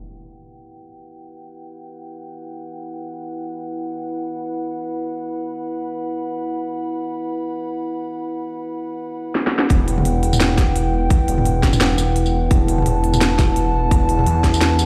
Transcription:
Already playing: E4 B4 F#5 G5
4.09 B5
9.35 snare
9.47 snare
9.59 snare
9.70 E1 E4 B4 F#5 G5, kick, closed hi-hat
9.88 closed hi-hat
9.98 mid tom
10.05 E1, closed hi-hat
10.23 closed hi-hat
10.33 mid tom, tambourine
10.40 snare, closed hi-hat
10.58 kick, snare, closed hi-hat, mid tom
10.76 closed hi-hat
11.10 kick, closed hi-hat
11.28 E1, closed hi-hat
11.38 mid tom
11.45 closed hi-hat
11.63 kick, snare, closed hi-hat
11.73 mid tom, tambourine
11.81 snare, closed hi-hat
11.98 closed hi-hat, tambourine
12.16 closed hi-hat
12.26 tambourine
12.33 E1
12.51 E1 A5, kick, closed hi-hat
12.68 closed hi-hat
12.78 mid tom
12.82 closed hi-hat, mid tom
12.86 E1, mid tom
12.91 mid tom
13.04 closed hi-hat
13.14 mid tom, tambourine
13.21 snare, closed hi-hat
13.39 kick, snare, closed hi-hat, mid tom
13.56 closed hi-hat
13.91 E1, kick, closed hi-hat
14.09 closed hi-hat
14.19 mid tom
14.21 mid tom
14.24 E2, closed hi-hat, mid tom
14.44 kick, snare, closed hi-hat
14.54 tambourine
14.61 snare, closed hi-hat
14.79 closed hi-hat, tambourine

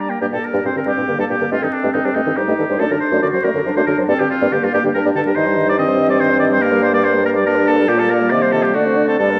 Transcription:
Already playing: G3
0.00 D4 D5 A#5
0.09 A#3 A#4 G5
0.21 G2 G3 A#3 G4 D5
0.32 G2 A#2 G4 A4
0.44 A#4
0.54 G2 G3 D5
0.64 G2 A#2 C4 G4 C5
0.75 G2 D3 A#4
0.86 G2 G3 G4 D5
0.97 G2 A#2 G4
1.08 G2 D3 A#3 A#4
1.19 G2 G3 A4 D5
1.30 G2 A#2 G4
1.40 G2 D3 A#4
1.51 G2 A3 C4 F4 D#5
1.61 G2 D#3 D#4 A4
1.73 D4
1.83 G2 A3 D#5
1.93 G2 D#3 D#4 A4
2.05 G2 G3 D4 C5
2.15 G2 A3 D#4 D#5
2.26 G2 D#3 A4
2.36 G2 G3 D#4 G4 C5
2.48 G2 A3 D#5
2.59 G2 D#3 A4
2.69 G2 G3 C5
2.79 F#2 A3 D4 A4 D5
2.90 F#2 D3 A4 A#4
3.00 C5
3.12 F#2 A3 D5
3.22 F#2 D3 F#4 A4 D5
3.33 F#2 F#3 C5
3.44 F#2 A3 A#4 D5
3.54 F#2 D3 A4
3.65 F#2 F#3 D4 C5
3.76 F#2 A3 C5 D5
3.87 F#2 D3 A4 A#4
3.98 F#2 F#3 C5
4.08 G2 A#3 C4 A4 D5
4.19 G2 D3 G4
4.30 F4
4.41 G2 A#3 D5
4.52 G2 D3 A#3 G4
4.62 G2 G3 F4 A#4
4.72 G2 A#3 G4 D5
4.83 G2 D3 G4
4.94 G2 G3 D4 A#4
5.04 G2 A#3 D5
5.14 G2 D3 G4 A4
5.25 G2 G3 A#4
5.35 G2 D#3 D#4 C5 D#5
5.46 G3 C5
5.56 D#3 D#5
5.67 G3 C5 D5
5.78 D#3 C4 D#5
5.88 G3 C5
5.99 D#3 D#5
6.10 G3 C5 D5
6.20 D#3 C5 D#5
6.30 G3 C5
6.40 D#3 D5 D#5
6.51 G3 C5
6.61 A#3 A#4 D5
6.72 G3 A#4
6.82 A#3 C5 D5
6.93 G3 A#4 D5
7.03 A#3 C5 D5
7.14 G3 A#4
7.24 A#3 A#4 D5
7.34 G3 A#4 D5
7.45 A#3 D4 A#4 D5
7.55 G3 A#4
7.66 A#3 A4 D5
7.77 G3 A#4
7.87 A#2 A#3 G4 D5
7.98 G3 A4 A#4
8.10 A#3 A#4 D5
8.20 G3 A#4
8.30 C3 D#3 D5 D#5
8.42 G3 C5
8.52 D#3 A4 D#5
8.63 G3 G4 C5
8.74 D3 A3 D4 F#4 D5
8.85 C4 C5
8.96 D4 D5
9.07 C4 A4 C5
9.19 G2 G3 A4 D5
9.30 A#3 A#4

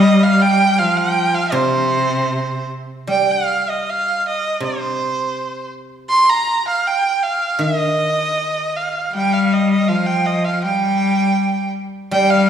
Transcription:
Already playing: G3 D#5
0.23 F5
0.42 G5
0.79 F3 F5
0.97 G5
1.35 F5
1.52 C3 C5
3.07 G3 G5
3.31 F5
3.70 D#5
3.90 F5
4.28 D#5
4.60 C3 C5
6.09 C6
6.29 A#5
6.67 F5
6.87 G5
7.23 F5
7.59 D#3 D#5
8.76 F5
9.13 G3 G5
9.33 F5
9.53 D#5
9.71 D#5
9.88 F3 F5
10.06 G5
10.26 D#5
10.44 F5
10.63 G3 G5
12.11 G3 G5
12.30 F5

